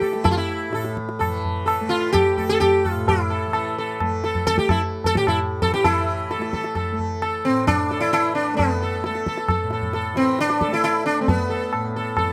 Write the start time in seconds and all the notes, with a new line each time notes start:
Already playing: A2 E3 A3 G4
0.01 A4, tabla ke
0.13 A3, tabla te
0.24 E4, tabla tin, tabla ge
0.31 F4
0.37 E4
0.69 A2, tabla te
0.74 A4
0.85 tabla te
0.97 tabla ke
1.09 tabla te
1.19 A4, tabla na, tabla ge
1.26 E3
1.44 tabla ge
1.66 A4, tabla na
1.81 A3
1.89 F4
2.12 G4, tabla na, tabla ge
2.37 A3 A4, tabla ge
2.49 A4
2.60 G4, tabla na, tabla ge
2.85 A4, tabla ge
2.91 A2 F4
3.08 E4, tabla tin, tabla ge
3.30 A4
3.47 E3
3.53 A4, tabla na
3.78 A4
4.00 A3, tabla na, tabla ge
4.24 A4, tabla te
4.35 tabla ge
4.47 A4, tabla tin, tabla ge
4.55 A3 G4, tabla ke
4.69 E4, tabla na, tabla ge
5.04 A4, tabla tin, tabla ge
5.12 A2, tabla ke
5.17 G4
5.27 E4, tabla na, tabla ge
5.62 E3 A4, tabla tin, tabla ge
5.74 G4, tabla ke
5.84 E3 E4 A4, tabla tin, tabla ge
6.31 A4, tabla te
6.38 A3, tabla te
6.53 A4, tabla ke
6.64 tabla te
6.75 A4, tabla na, tabla ge
6.92 A3
6.98 tabla ge
7.22 A4, tabla na
7.45 A2 C4
7.67 D4, tabla na, tabla ge
7.91 A4, tabla te
8.00 E3 E4
8.13 E4, tabla na
8.35 D4
8.54 A3 B3
8.59 tabla tin, tabla ge
8.82 A4
9.04 A4, tabla te
9.08 A3
9.15 tabla te
9.27 A4, tabla ke
9.38 tabla te
9.48 A4, tabla na, tabla ge
9.61 A2
9.71 A4, tabla te
9.82 tabla ge
9.93 A4, tabla te
10.14 E3 C4, tabla te
10.39 D4, tabla te
10.50 tabla te
10.61 A4, tabla ke
10.67 A3
10.73 E4, tabla te
10.84 E4, tabla na
11.06 D4
11.20 A3 C4
11.28 B3, tabla tin, tabla ge
11.50 A4
11.72 A2, tabla na
11.96 A4
12.17 A4, tabla na, tabla ge
12.24 E3